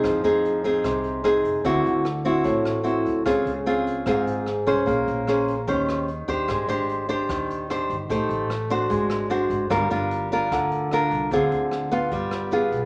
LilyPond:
<<
  \new Staff \with { instrumentName = "Nylon-string guitar" } { \time 4/4 \key f \dorian \tempo 4 = 149 << { <c' ees' aes'>8 <c' ees' aes'>4 <c' ees' aes'>4. <c' ees' aes'>4 | <c' e' fis'>4 r8 <c' e' fis'>4. <c' e' fis'>4 | <c' f' aes'>8 r8 <c' f' aes'>4 <c' f' aes'>4 r8 <des' aes' c''>8~ | <des' aes' c''>4 <des' aes' c''>8 r8 <des' g' c''>4 r8 <d' g' c''>8~ |
<d' g' c''>8 <d' g' c''>4 <d' g' c''>4. <d' g' c''>8 r8 | <ees' g' c''>4 r8 <d' fis' c''>4. <d' ges' c''>4 | <d' f' bes'>8 <d' f' bes'>4 <d' f' bes'>4. <d' f' bes'>4 | <c' f' aes'>4. <b f'>4. <b f' aes'>8 r8 | } \\ { f2 c2 | d2 a,2 | des2 aes,2 | bes2 ees2 |
aes2 ees2 | a2 aes2 | g2 d2 | d2 g2 | } >> }
  \new Staff \with { instrumentName = "Upright bass" } { \clef bass \time 4/4 \key f \dorian f,8 f,4. c,4. f,8 | d,8 d,4. a,,4. d,8 | des,8 des,4. aes,,4. c,8 | bes,,8 bes,,4. ees,4. ees,8 |
aes,,8 aes,,4. ees,4. g,,8 | a,,8 a,,4. aes,,4. aes,,8 | g,,8 g,,4. d,4. c,8 | d,8 d,4. g,,4. b,,8 | }
  \new DrumStaff \with { instrumentName = "Drums" } \drummode { \time 4/4 <hh bd ss>8 hh8 hh8 <hh bd>8 <hh bd ss>8 hh8 <hh ss>8 <hh bd>8 | <hh bd>8 hh8 <hh ss>8 <hh bd>8 <hh bd>8 <hh ss>8 hh8 <hh bd>8 | <hh bd ss>8 hh8 hh8 <hh bd>8 <hh bd ss>8 hh8 <hh ss>8 <hh bd>8 | <hh bd>8 hh8 <hh ss>8 <hh bd>8 <hh bd>8 <hh ss>8 hh8 <hh bd>8 |
<hh bd ss>8 hh8 hh8 <hh bd>8 <hh bd ss>8 hh8 <hh ss>8 <hh bd>8 | <hh bd>8 hh8 <hh ss>8 <hh bd>8 <hh bd>8 <hh ss>8 hh8 <hh bd>8 | <hh bd ss>8 hh8 hh8 <hh bd>8 <hh bd ss>8 hh8 <hh ss>8 <hh bd>8 | <hh bd>8 hh8 <hh ss>8 <hh bd>8 <hh bd>8 <hh ss>8 hh8 <hh bd>8 | }
>>